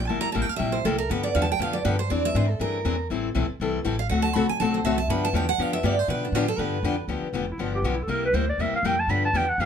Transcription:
0.07 upright bass G1, steel-string acoustic guitar C3 G3 A#3 E4 G4 A5
0.21 steel-string acoustic guitar A#5, muted upright bass stroke
0.32 upright bass A1, steel-string acoustic guitar C3 G3 A#3 E4 G4 A5
0.42 steel-string acoustic guitar G5
0.49 steel-string acoustic guitar F5, muted upright bass stroke
0.56 upright bass A#1, steel-string acoustic guitar C3 G3 A#3 E4 G4 E5
0.72 steel-string acoustic guitar C5
0.85 upright bass C2, steel-string acoustic guitar C3 G3 A#3 E4 G4 A4
0.98 steel-string acoustic guitar A#4
1.09 upright bass G2, steel-string acoustic guitar D3 F3 B3 D4 G4 B4
1.23 steel-string acoustic guitar D5
1.35 upright bass E2, steel-string acoustic guitar D3 F3 B3 D4 G4 F5
1.42 steel-string acoustic guitar A5
1.52 steel-string acoustic guitar G5
1.59 upright bass F2, steel-string acoustic guitar D3 F3 B3 D4 G4 F5
1.73 steel-string acoustic guitar D5
1.85 upright bass G2, steel-string acoustic guitar D3 F3 B3 D4 G4 B4
1.99 steel-string acoustic guitar C5
2.10 upright bass E2, steel-string acoustic guitar E3 C4 D4 G#4 D5
2.25 steel-string acoustic guitar E5
2.35 upright bass G#2, steel-string acoustic guitar E3 C4 D4 G#4 C5
2.49 steel-string acoustic guitar A4
2.60 upright bass G2, steel-string acoustic guitar E3 C4 D4 G#4 A#4
2.85 upright bass E2, steel-string acoustic guitar E3 C4 D4 G#4
3.10 upright bass A1, steel-string acoustic guitar E3 G3 C4 E4 A4
3.35 upright bass B1, steel-string acoustic guitar E3 G3 C4 E4 A4
3.49 muted upright bass stroke
3.60 upright bass C2, steel-string acoustic guitar E3 G3 C4 E4 A4
3.85 upright bass A1, steel-string acoustic guitar E3 G3 C4 E4 A4
3.99 steel-string acoustic guitar F5
4.09 upright bass D2, steel-string acoustic guitar D3 A3 C4 F#4 A4 F#5
4.22 steel-string acoustic guitar A5
4.33 upright bass C2, steel-string acoustic guitar D3 A3 C4 F#4 A4 B5
4.49 steel-string acoustic guitar G#5, muted upright bass stroke
4.60 upright bass B1, steel-string acoustic guitar D3 A3 C4 F#4 A4 A5
4.74 steel-string acoustic guitar C5
4.84 upright bass C2, steel-string acoustic guitar D3 A3 C4 F#4 A4 E5
4.98 steel-string acoustic guitar A5
5.08 upright bass G2, steel-string acoustic guitar D3 F3 B3 D4 G4 B5
5.25 steel-string acoustic guitar A5
5.33 upright bass E2, steel-string acoustic guitar D3 F3 B3 D4 G4 G5
5.49 steel-string acoustic guitar F#5
5.58 upright bass F2, steel-string acoustic guitar D3 F3 B3 D4 G4 F5
5.73 steel-string acoustic guitar E5
5.83 upright bass G2, steel-string acoustic guitar D3 F3 B3 D4 G4 D5
5.99 steel-string acoustic guitar C5
6.08 upright bass B2, steel-string acoustic guitar D3 F3 B3 D4 G4 B4
6.25 steel-string acoustic guitar D4
6.32 upright bass A2, steel-string acoustic guitar D3 F3 B3 D4 F4 G4
6.48 steel-string acoustic guitar A4
6.58 upright bass G2, steel-string acoustic guitar D3 F3 B3 D4 G4 B4
6.83 upright bass F2, steel-string acoustic guitar D3 F3 B3 D4 G4
7.08 upright bass D2, steel-string acoustic guitar D3 F3 B3 D4 G4
7.22 muted upright bass stroke
7.33 upright bass F1, steel-string acoustic guitar D3 F3 B3 D4 G4
7.51 clarinet E4
7.58 upright bass G1, steel-string acoustic guitar D3 F3 B3 D4 G4, clarinet F4
7.75 clarinet G4
7.82 upright bass B1, steel-string acoustic guitar D3 F3 B3 D4 G4
7.87 clarinet F4
7.95 clarinet E4
8.03 clarinet A4
8.08 upright bass C2, steel-string acoustic guitar C3 G3 A#3 E4 G4, clarinet A#4
8.25 clarinet B4
8.33 upright bass D2, steel-string acoustic guitar C3 G3 A#3 E4 G4, clarinet C5
8.49 clarinet D5
8.58 upright bass E2, steel-string acoustic guitar C3 G3 A#3 E4 G4, clarinet E5
8.73 clarinet F5, muted upright bass stroke
8.83 upright bass F2, steel-string acoustic guitar C3 G3 A#3 E4 G4, clarinet G5
9.00 clarinet A5
9.07 upright bass G2, steel-string acoustic guitar D3 F3 B3 D4 G4, clarinet B5
9.25 clarinet A5
9.33 upright bass E2, steel-string acoustic guitar D3 F3 B3 D4 G4, clarinet G5
9.49 clarinet F#5
9.58 upright bass F2, steel-string acoustic guitar D3 F3 B3 D4 G4, clarinet F5

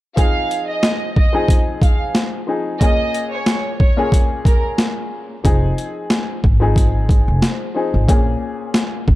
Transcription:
0.16 upright piano F3 C4 D#4 G#4, violin section F5, kick, closed hi-hat
0.51 closed hi-hat
0.69 violin section D#5
0.83 snare, closed hi-hat
1.16 violin section D#5, kick
1.33 upright piano F3 C4 D#4 G#4
1.48 kick, closed hi-hat
1.82 violin section F5, kick, closed hi-hat
2.15 snare, closed hi-hat
2.47 upright piano F3 C4 D#4 G#4
2.80 upright piano A#2 A#3 C#4 G#4, violin section D#5, kick, closed hi-hat
3.14 closed hi-hat
3.33 violin section C#5
3.46 snare, closed hi-hat
3.80 violin section C#5, kick
3.97 upright piano A#2 A#3 C#4 G#4
4.12 kick, closed hi-hat
4.45 violin section A#4, kick, closed hi-hat
4.78 snare, closed hi-hat
5.44 upright bass F1, upright piano F3 C4 D#4 G#4, kick, closed hi-hat
5.78 closed hi-hat
6.10 snare, closed hi-hat
6.44 upright bass G#1, kick
6.60 upright piano F3 C4 D#4 G#4
6.76 kick, closed hi-hat
7.09 kick, closed hi-hat
7.28 upright bass F1
7.42 snare, closed hi-hat
7.74 upright piano F3 C4 D#4 G#4
7.94 upright bass G#1
8.08 upright bass A#1, upright piano A#2 A#3 C#4 G#4, kick, closed hi-hat
8.74 snare, closed hi-hat
9.08 upright bass G#1, kick

